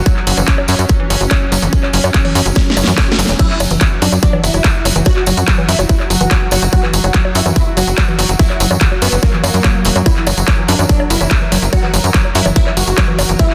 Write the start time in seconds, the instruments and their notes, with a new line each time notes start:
Already playing: synth texture F#3
0.06 synth arpeggio sound F#3, synth texture C#4, kick, closed hi-hat, high bongo
0.16 clap
0.27 analog synth bass F#1, synth arpeggio sound F#3, open hi-hat, tambourine
0.37 analog synth bass F#1, synth arpeggio sound E3, closed hi-hat, tambourine, high bongo
0.48 kick, clap, closed hi-hat
0.58 synth arpeggio sound F#4, high bongo
0.68 analog synth bass F#2, synth arpeggio sound F#3, open hi-hat, tambourine
0.79 analog synth bass F#2, closed hi-hat, tambourine, high bongo
0.89 synth arpeggio sound F#3, kick, closed hi-hat, tambourine
1.00 synth arpeggio sound E3
1.10 analog synth bass F#1, open hi-hat, tambourine, high bongo
1.21 analog synth bass F#1, synth arpeggio sound F#4, closed hi-hat, tambourine
1.30 synth arpeggio sound F#3, kick, clap, closed hi-hat, tambourine, high bongo
1.52 analog synth bass F#1, synth arpeggio sound F#3, open hi-hat, tambourine, high bongo
1.62 analog synth bass F#1, synth arpeggio sound E3, closed hi-hat, tambourine
1.73 kick, closed hi-hat, tambourine
1.83 synth arpeggio sound F#4, clap, high bongo
1.93 analog synth bass F#1, synth arpeggio sound F#3, open hi-hat, tambourine
2.03 analog synth bass F#2, closed hi-hat, tambourine, high bongo
2.14 synth arpeggio sound F#3, kick, clap, closed hi-hat, tambourine
2.25 synth arpeggio sound E3, open hi-hat, high bongo
2.35 analog synth bass F#2, open hi-hat, tambourine
2.46 analog synth bass F#1, synth arpeggio sound F#4, closed hi-hat, tambourine
2.55 synth arpeggio sound F#3, kick, snare, closed hi-hat, tambourine, high bongo
2.70 snare
2.77 analog synth bass F#1, synth arpeggio sound F#3, open hi-hat, tambourine, high bongo
2.84 analog synth bass F#2, synth arpeggio sound E3, snare, closed hi-hat, tambourine
2.98 kick, snare, clap, closed hi-hat, tambourine, high bongo
3.08 synth arpeggio sound F#4, snare
3.19 analog synth bass F#1, synth arpeggio sound F#3, open hi-hat, tambourine
3.26 analog synth bass E1, snare, closed hi-hat, tambourine, high bongo
3.39 synth texture F#3 F#4, synth arpeggio sound F#3, supersaw synth E4, kick, closed hi-hat, crash, tambourine, high bongo
3.50 clap
3.60 analog synth bass F#1, synth arpeggio sound F#3, open hi-hat, tambourine, high bongo
3.70 analog synth bass F#1, synth arpeggio sound E3, closed hi-hat, tambourine
3.81 kick, clap, closed hi-hat, tambourine, high bongo
3.92 synth arpeggio sound F#4
4.02 analog synth bass F#2, synth arpeggio sound F#3, supersaw synth D4, open hi-hat, tambourine
4.12 analog synth bass F#2, closed hi-hat, tambourine, high bongo
4.23 synth arpeggio sound F#3, supersaw synth D4, kick, closed hi-hat, tambourine
4.33 synth arpeggio sound E3, high bongo
4.44 analog synth bass F#1, supersaw synth E4, open hi-hat, tambourine
4.53 analog synth bass F#1, synth arpeggio sound F#4, closed hi-hat, tambourine, high bongo
4.64 synth arpeggio sound F#3, kick, clap, closed hi-hat
4.85 analog synth bass F#1, synth arpeggio sound F#3, open hi-hat, tambourine, high bongo
4.96 analog synth bass F#1, synth arpeggio sound E3, closed hi-hat, tambourine
5.05 supersaw synth F#4, kick, closed hi-hat, tambourine, high bongo
5.16 synth arpeggio sound F#4, clap
5.26 analog synth bass F#1, synth arpeggio sound F#3, open hi-hat, tambourine, high bongo
5.37 analog synth bass F#2, closed hi-hat, tambourine
5.48 synth arpeggio sound F#3, kick, clap, closed hi-hat, tambourine
5.58 synth arpeggio sound E3, high bongo
5.69 analog synth bass F#2, supersaw synth E4, open hi-hat, tambourine
5.79 analog synth bass F#1, synth arpeggio sound F#4, closed hi-hat, tambourine, high bongo
5.89 synth arpeggio sound F#3, supersaw synth E4, kick, closed hi-hat
6.00 clap, high bongo
6.10 analog synth bass F#1, synth arpeggio sound F#3, supersaw synth F#4, open hi-hat, tambourine
6.21 analog synth bass F#1, synth arpeggio sound E3, closed hi-hat, tambourine
6.31 kick, clap, closed hi-hat, high bongo
6.42 synth arpeggio sound F#4
6.51 analog synth bass F#1, synth arpeggio sound F#3, open hi-hat, tambourine, high bongo
6.62 analog synth bass F#1, closed hi-hat, tambourine
6.73 synth arpeggio sound F#3, supersaw synth F#4, kick, closed hi-hat, tambourine, high bongo
6.83 synth arpeggio sound E3, clap
6.93 analog synth bass F#1, open hi-hat, tambourine
7.04 analog synth bass F#1, synth arpeggio sound F#4, closed hi-hat, tambourine, high bongo
7.13 synth arpeggio sound F#3, kick, clap, closed hi-hat, tambourine
7.25 high bongo
7.35 analog synth bass F#2, synth arpeggio sound F#3, supersaw synth E4, open hi-hat, tambourine
7.46 analog synth bass F#2, synth arpeggio sound E3, tambourine, high bongo
7.56 supersaw synth E4, kick, closed hi-hat, tambourine
7.67 synth arpeggio sound F#4
7.77 analog synth bass F#1, synth arpeggio sound F#3, supersaw synth F#4, open hi-hat, tambourine, high bongo
7.87 analog synth bass F#1, closed hi-hat, tambourine
7.98 synth arpeggio sound F#3, kick, clap, closed hi-hat, high bongo
8.08 synth arpeggio sound E3
8.19 analog synth bass F#1, open hi-hat, tambourine, high bongo
8.29 analog synth bass F#1, synth arpeggio sound F#4, closed hi-hat, tambourine
8.39 synth arpeggio sound F#3, supersaw synth E4, kick, closed hi-hat, tambourine
8.50 clap, high bongo
8.60 analog synth bass F#1, synth arpeggio sound F#3, open hi-hat, tambourine
8.70 analog synth bass F#2, synth arpeggio sound E3, closed hi-hat, tambourine, high bongo
8.81 kick, clap, closed hi-hat, tambourine
8.91 synth arpeggio sound F#4, high bongo
9.02 analog synth bass F#2, synth arpeggio sound F#3, supersaw synth B3, open hi-hat, tambourine
9.12 analog synth bass F#1, closed hi-hat, tambourine
9.23 synth arpeggio sound F#3, supersaw synth A#3, kick, closed hi-hat, high bongo
9.33 synth arpeggio sound E3, clap
9.44 analog synth bass F#2, supersaw synth A#3, open hi-hat, tambourine, high bongo
9.54 analog synth bass F#2, synth arpeggio sound F#3, closed hi-hat, tambourine
9.64 synth arpeggio sound F#3, kick, clap, closed hi-hat, high bongo
9.75 synth arpeggio sound F#3
9.85 analog synth bass E1, synth arpeggio sound F#3, open hi-hat, tambourine
9.95 analog synth bass F#2, synth arpeggio sound F#3, closed hi-hat, tambourine, high bongo
10.06 supersaw synth E4, synth texture A#4, kick, closed hi-hat, tambourine, high bongo
10.16 synth arpeggio sound E3, clap
10.27 analog synth bass F#1, synth arpeggio sound F#3, open hi-hat, tambourine, high bongo
10.37 analog synth bass F#1, closed hi-hat, tambourine
10.48 synth arpeggio sound F#3, kick, clap, closed hi-hat, high bongo
10.58 synth arpeggio sound E3
10.68 analog synth bass F#2, supersaw synth D4, open hi-hat, tambourine
10.79 analog synth bass F#2, synth arpeggio sound E3, closed hi-hat, tambourine, high bongo
10.89 synth arpeggio sound F#3, supersaw synth D4, kick, closed hi-hat
11.00 high bongo
11.10 analog synth bass F#1, synth arpeggio sound F#3, supersaw synth E4, open hi-hat, tambourine
11.21 analog synth bass F#1, synth arpeggio sound E3, closed hi-hat, tambourine, high bongo
11.31 kick, clap, closed hi-hat
11.41 synth arpeggio sound E3
11.52 analog synth bass F#1, synth arpeggio sound F#3, open hi-hat, tambourine, high bongo
11.62 analog synth bass F#1, closed hi-hat, tambourine
11.73 synth arpeggio sound F#3, supersaw synth F#4, kick, closed hi-hat, tambourine, high bongo
11.83 synth arpeggio sound E3, clap
11.94 analog synth bass F#1, open hi-hat, tambourine, high bongo
12.04 analog synth bass F#2, synth arpeggio sound E3, closed hi-hat, tambourine
12.14 synth arpeggio sound F#3, kick, clap, closed hi-hat
12.25 high bongo
12.35 analog synth bass F#2, synth arpeggio sound F#3, supersaw synth E4, open hi-hat, tambourine
12.45 analog synth bass F#1, synth arpeggio sound E3, tambourine, high bongo
12.56 supersaw synth E4, kick, closed hi-hat, tambourine
12.66 synth arpeggio sound E3, clap, high bongo
12.77 analog synth bass F#1, synth arpeggio sound F#3, supersaw synth F#4, open hi-hat, tambourine
12.87 analog synth bass F#1, closed hi-hat, tambourine
12.98 synth arpeggio sound F#3, kick, clap, closed hi-hat, high bongo
13.08 synth arpeggio sound E3
13.19 analog synth bass F#1, open hi-hat, tambourine, high bongo
13.29 analog synth bass F#1, synth arpeggio sound E3, closed hi-hat, tambourine
13.39 synth arpeggio sound F#3, supersaw synth E4, kick, closed hi-hat, high bongo
13.50 clap